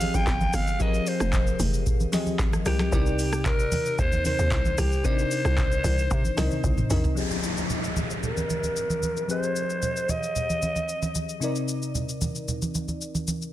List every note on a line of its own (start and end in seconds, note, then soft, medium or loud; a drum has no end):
0.00 0.10 G#1 loud
0.00 0.79 F3 loud
0.00 0.80 C4 medium
0.00 0.80 G4 loud
0.00 0.81 G#4 medium
0.00 2.14 D#5 loud
0.00 0.17 F5 loud
0.00 0.65 F5 medium
0.00 open hi-hat medium
0.00 high conga medium
0.00 shaker medium
0.14 0.26 G#1 medium
0.14 0.56 G5 loud
0.14 high conga medium
0.14 shaker medium
0.27 0.51 G1 loud
0.27 kick loud
0.27 clap loud
0.27 low conga medium
0.27 shaker medium
0.41 high conga medium
0.41 shaker soft
0.53 0.77 G1 medium
0.53 0.83 F5 loud
0.53 cross-stick medium
0.53 open hi-hat medium
0.53 high conga medium
0.53 shaker loud
0.67 shaker soft
0.79 1.65 F3 loud
0.79 1.65 C4 medium
0.79 1.65 G4 medium
0.79 1.66 G#4 medium
0.79 1.66 A#4 loud
0.79 1.09 D#5 loud
0.79 kick loud
0.79 shaker medium
0.94 shaker medium
1.07 1.60 C5 medium
1.07 open hi-hat medium
1.07 shaker medium
1.20 1.56 F1 loud
1.20 cross-stick loud
1.20 shaker medium
1.33 kick loud
1.33 clap medium
1.33 low conga medium
1.33 shaker medium
1.47 shaker medium
1.59 1.84 F1 loud
1.59 open hi-hat medium
1.59 high conga medium
1.59 low conga medium
1.59 shaker loud
1.74 shaker medium
1.86 kick loud
1.86 low conga medium
1.86 shaker medium
2.00 high conga medium
2.00 shaker medium
2.12 2.55 F3 medium
2.12 2.56 C4 medium
2.12 2.56 G4 medium
2.12 2.56 G#4 medium
2.12 2.56 D#5 loud
2.12 snare medium
2.12 open hi-hat medium
2.12 high conga medium
2.12 shaker medium
2.26 high conga medium
2.26 shaker medium
2.39 2.63 G#1 loud
2.39 kick loud
2.39 clap loud
2.39 low conga medium
2.39 shaker medium
2.53 cross-stick loud
2.53 high conga medium
2.53 shaker medium
2.65 2.90 C2 medium
2.65 2.87 F3 medium
2.65 2.87 C4 medium
2.65 2.87 G4 medium
2.65 3.42 G4 loud
2.65 2.88 G#4 medium
2.65 2.88 A#4 medium
2.65 cross-stick medium
2.65 open hi-hat medium
2.65 high conga medium
2.65 shaker medium
2.79 cross-stick loud
2.79 snare medium
2.79 shaker soft
2.92 3.68 C2 loud
2.92 3.77 C3 loud
2.92 3.77 C4 medium
2.92 3.78 D#4 medium
2.92 3.78 A#4 loud
2.92 3.78 D5 loud
2.92 kick loud
2.92 shaker medium
3.06 shaker medium
3.19 open hi-hat medium
3.19 shaker medium
3.33 cross-stick loud
3.33 shaker medium
3.45 4.01 A#4 loud
3.45 kick loud
3.45 clap medium
3.45 low conga medium
3.45 shaker medium
3.59 shaker medium
3.72 open hi-hat medium
3.72 high conga medium
3.72 low conga medium
3.72 shaker loud
3.86 shaker medium
3.99 4.35 D#2 medium
3.99 4.26 C5 loud
3.99 kick loud
3.99 low conga medium
3.99 shaker medium
4.12 high conga medium
4.12 shaker medium
4.24 4.89 C3 medium
4.24 4.89 C4 medium
4.24 4.89 D#4 medium
4.24 4.90 A#4 medium
4.24 4.80 C5 loud
4.24 4.90 C5 medium
4.24 open hi-hat medium
4.24 high conga medium
4.24 shaker medium
4.39 4.51 D#2 medium
4.39 high conga medium
4.39 shaker medium
4.51 4.76 C2 medium
4.51 kick medium
4.51 clap loud
4.51 low conga medium
4.51 shaker medium
4.65 high conga medium
4.65 shaker medium
4.78 5.02 C2 medium
4.78 5.07 G4 loud
4.78 cross-stick loud
4.78 open hi-hat medium
4.78 high conga medium
4.78 shaker loud
4.92 shaker soft
5.04 5.90 C3 loud
5.04 5.90 C4 loud
5.04 5.11 D4 medium
5.04 5.90 A#4 medium
5.04 6.91 C5 loud
5.04 5.91 D5 loud
5.04 kick loud
5.04 shaker medium
5.11 5.93 D#4 medium
5.19 shaker medium
5.31 open hi-hat soft
5.31 shaker medium
5.45 5.81 C2 medium
5.45 cross-stick loud
5.45 shaker medium
5.58 kick loud
5.58 clap medium
5.58 low conga medium
5.58 shaker medium
5.72 shaker medium
5.84 6.08 C2 loud
5.84 open hi-hat medium
5.84 high conga medium
5.84 low conga medium
5.84 shaker loud
5.98 shaker medium
6.11 6.23 C3 loud
6.11 kick loud
6.11 low conga medium
6.11 shaker medium
6.25 high conga medium
6.25 shaker medium
6.36 6.50 C2 loud
6.36 6.80 C3 loud
6.36 6.80 C4 medium
6.36 6.81 D#4 medium
6.36 6.81 A#4 medium
6.36 6.81 D#5 loud
6.36 cross-stick medium
6.36 snare medium
6.36 open hi-hat medium
6.36 high conga medium
6.36 shaker medium
6.51 high conga medium
6.51 shaker medium
6.64 6.76 C2 loud
6.64 kick medium
6.64 high tom medium
6.64 low conga medium
6.64 shaker medium
6.78 mid tom medium
6.78 high conga medium
6.78 shaker medium
6.90 7.03 A#1 loud
6.90 7.12 C3 medium
6.90 7.12 C4 medium
6.90 7.12 D#4 medium
6.90 7.12 A#4 medium
6.90 7.13 D#5 loud
6.90 mid tom loud
6.90 open hi-hat medium
6.90 high conga medium
6.90 shaker loud
7.04 floor tom medium
7.04 shaker soft
7.15 9.25 F3 medium
7.15 9.25 C4 medium
7.15 9.26 G4 medium
7.15 9.26 G#4 medium
7.15 downlifter medium
7.15 shaker medium
7.19 9.27 D#5 medium
7.31 shaker soft
7.43 shaker medium
7.57 shaker medium
7.70 low conga medium
7.70 shaker medium
7.84 shaker medium
7.96 high conga medium
7.96 low conga medium
7.96 shaker medium
8.10 shaker soft
8.23 9.26 A#4 medium
8.23 low conga medium
8.23 shaker medium
8.37 high conga medium
8.37 shaker medium
8.50 high conga medium
8.50 shaker medium
8.63 high conga medium
8.63 shaker medium
8.77 shaker medium
8.90 high conga medium
8.90 shaker soft
9.03 high conga medium
9.03 shaker medium
9.17 shaker soft
9.28 11.37 F3 medium
9.28 11.38 C4 medium
9.28 11.38 G4 medium
9.28 11.39 G#4 medium
9.28 10.12 C5 loud
9.28 shaker medium
9.32 11.39 D#5 medium
9.43 shaker medium
9.56 shaker medium
9.70 shaker medium
9.82 low conga medium
9.82 shaker medium
9.96 shaker medium
10.09 11.16 D#5 loud
10.09 high conga medium
10.09 low conga medium
10.09 shaker medium
10.23 shaker soft
10.36 low conga medium
10.36 shaker medium
10.50 high conga medium
10.50 shaker medium
10.62 high conga medium
10.62 shaker medium
10.76 high conga medium
10.76 shaker soft
10.89 shaker medium
11.02 high conga medium
11.02 shaker soft
11.15 high conga medium
11.15 shaker medium
11.29 shaker soft
11.40 13.49 C3 medium
11.40 13.50 C4 medium
11.40 13.50 D#4 medium
11.40 13.51 A#4 medium
11.40 shaker medium
11.44 13.52 D5 medium
11.56 shaker medium
11.68 shaker medium
11.82 shaker medium
11.95 low conga medium
11.95 shaker medium
12.09 shaker medium
12.21 high conga medium
12.21 low conga medium
12.21 shaker medium
12.35 shaker soft
12.48 low conga medium
12.48 shaker medium
12.62 high conga medium
12.62 shaker medium
12.75 high conga medium
12.75 shaker medium
12.88 high conga medium
12.88 shaker medium
13.01 shaker medium
13.15 high conga medium
13.15 shaker soft
13.28 high conga medium
13.28 shaker medium
13.42 shaker soft